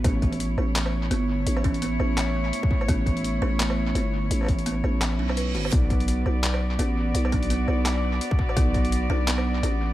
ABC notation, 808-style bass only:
X:1
M:4/4
L:1/8
Q:"Swing 16ths" 1/4=169
K:Amix
V:1 name="808-style bass" clef=bass
A,,,3 A,,,3 G,,,2 | A,,,3 A,,,3 z2 | A,,,3 A,,,3 G,,,2 | A,,,3 A,,,2 B,,,2 G,,, |
B,,,3 B,,,3 A,,,2 | B,,,3 B,,,3 z2 | B,,,3 B,,,3 A,,,2 |]